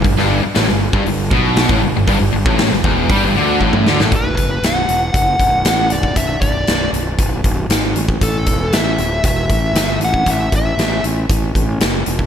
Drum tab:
HH |o---o---o---o---|o---o---o-------|x-x-x-x-x-x-x-x-|x-x-x-x-x-x-x-x-|
SD |-o--oo------o---|----oo--------oo|----o-------o---|----o-------o---|
T2 |----------------|-------------o--|----------------|----------------|
BD |o------o--o--o--|o--o--o-o---o---|o-o-----o-o----o|o-o-----o-o----o|

HH |x-x-x-x-x-x-x-x-|x-x-x-x-x-x-x-x-|
SD |----o-------o---|----o-------o---|
T2 |----------------|----------------|
BD |o-o-----o-o----o|o-o-----o-o----o|